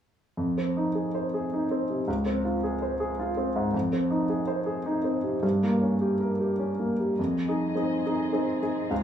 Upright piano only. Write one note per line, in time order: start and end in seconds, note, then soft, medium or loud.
0.37 2.03 F2 soft
0.58 0.88 C4 soft
0.77 1.07 D#4 soft
0.95 1.25 G#4 soft
1.15 1.44 C5 soft
1.34 1.63 G#4 soft
1.53 1.82 D#4 soft
1.71 2.01 C4 soft
1.90 2.08 C3 soft
2.08 3.70 C#2 soft
2.26 2.56 C4 soft
2.45 2.74 F4 soft
2.64 2.93 G#4 soft
2.82 3.11 C5 soft
3.00 3.30 G#4 soft
3.19 3.48 F4 soft
3.37 3.67 C4 soft
3.56 3.74 G#2 soft
3.74 5.39 F2 soft
3.93 4.22 C4 soft
4.10 4.41 D#4 soft
4.29 4.60 G#4 soft
4.47 4.78 C5 soft
4.66 4.97 G#4 soft
4.86 5.16 D#4 soft
5.04 5.35 C4 soft
5.24 5.43 C3 soft
5.43 7.14 G2 soft
5.63 5.93 A#3 soft
5.82 6.12 C#4 soft
6.01 6.32 G4 soft
6.20 6.51 A#4 soft
6.40 6.71 G4 soft
6.59 6.91 C#4 soft
6.79 7.11 A#3 soft
7.00 7.19 G3 soft
7.19 7.46 F2 soft
7.48 7.74 D#4 soft
7.48 7.74 G#4 soft
7.76 8.01 C4 soft
7.76 8.02 D#4 soft
7.76 8.02 G#4 soft
8.06 8.31 D#4 soft
8.06 8.31 G#4 soft
8.33 8.59 C4 soft
8.33 8.59 D#4 soft
8.33 8.59 G#4 soft
8.62 8.88 D#4 soft
8.62 8.88 G#4 soft
8.91 9.03 C#2 soft